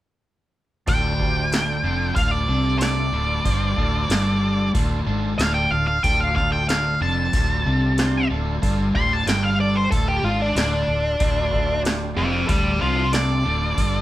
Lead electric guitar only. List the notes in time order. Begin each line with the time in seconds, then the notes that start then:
0.89 G5
2.15 F5
2.31 D5
2.79 D5
5.38 F5
5.54 G5
5.71 F5
5.87 F5
6.03 G5
6.20 F5
6.36 F5
6.52 G5
6.69 F5
7.02 A5
8.96 C6
9.13 A5
9.28 G5
9.43 F5
9.60 D5
9.75 C5
9.91 A4
10.08 G4
10.24 F4
10.42 D4
10.57 D4
12.17 A4 F5
12.48 D5 G5
12.81 C5 A5
13.13 D5